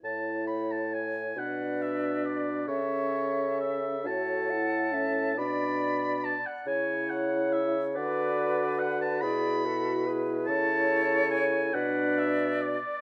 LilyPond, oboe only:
\new Staff \with { instrumentName = "Oboe" } { \time 6/8 \key a \major \tempo 4. = 46 a''8 b''16 a''16 gis''8 fis''8 e''8 d''8 | cis''4 e''8 a''4. | b''4 a''16 fis''16 gis''8 fis''8 e''8 | d''4 fis''16 a''16 b''4~ b''16 r16 |
a''4 gis''8 fis''8 e''8 d''8 | }